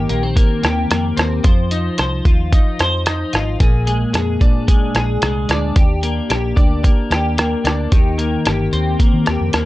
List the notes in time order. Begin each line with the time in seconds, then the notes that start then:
Already playing: D#3 G4
0.09 A#1 A#3, closed hi-hat
0.23 C4
0.36 A#3, kick, closed hi-hat
0.63 D#2 G4, cross-stick, closed hi-hat
0.90 F2 A#3, cross-stick, closed hi-hat
1.17 D#2 C4, cross-stick, closed hi-hat
1.44 F2 F3 C5, kick, closed hi-hat
1.71 D#4, closed hi-hat
1.98 C2 C5, cross-stick, closed hi-hat
2.25 D#2 F4, kick, closed hi-hat
2.53 D#4, kick, closed hi-hat
2.79 F2 C5, cross-stick, closed hi-hat
3.06 D#4, cross-stick, closed hi-hat
3.33 G#1 F4, cross-stick, closed hi-hat
3.60 A#1 A#2 G#4, kick, closed hi-hat
3.87 G#3, closed hi-hat
4.13 F2 G#4, cross-stick, closed hi-hat
4.41 A#2 D4, kick, closed hi-hat
4.68 G#3, kick, closed hi-hat
4.95 A#1 G#4, cross-stick, closed hi-hat
5.22 C2 G#3, cross-stick, closed hi-hat
5.49 D2 D4, cross-stick, closed hi-hat
5.76 D#2 G4, kick, closed hi-hat
6.03 A#3, closed hi-hat
6.30 A#1 G4, cross-stick, closed hi-hat
6.56 D2 D4, kick, closed hi-hat
6.84 A#3, kick, closed hi-hat
7.10 D#2 G4, cross-stick, closed hi-hat
7.38 A#3, cross-stick, closed hi-hat
7.64 D2 D4, cross-stick, closed hi-hat
7.92 D#2 D#3 G4, kick, closed hi-hat
8.18 A#3, closed hi-hat
8.45 G1 G4, cross-stick, closed hi-hat
8.73 D#2 C4, closed hi-hat
8.99 A#3, kick, closed hi-hat
9.14 D#3
9.26 D#2 G4, cross-stick, closed hi-hat
9.41 F2
9.53 D#2 A#3, cross-stick, closed hi-hat